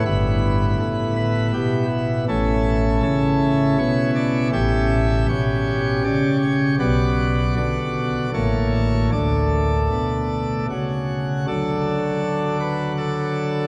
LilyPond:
<<
  \new Staff \with { instrumentName = "Pipe organ" } { \time 3/4 \key d \major \tempo 4 = 80 << { b'4. b'8 g'8 r8 | a'4 a'4 cis''8 d''8 | e''4 cis''4 d''8 cis''8 | d''4 d''4 cis''4 |
d''2 fis'4 | a'4. b'8 a'4 | } \\ { <b e'>2. | <cis' e'>2. | <cis' g'>2. | <b fis'>2 <bes a'>4 |
<a a'>2 r4 | <d fis d'>2. | } >> }
  \new Staff \with { instrumentName = "Pipe organ" } { \clef bass \time 3/4 \key d \major <g,, g,>4 a,4 b,4 | <a,, a,>4 cis4 b,4 | <a,, a,>4 b,4 cis4 | <b,, b,>4 d4 <a,, a,>4 |
<d, d>4 b,4 cis4 | r2. | }
>>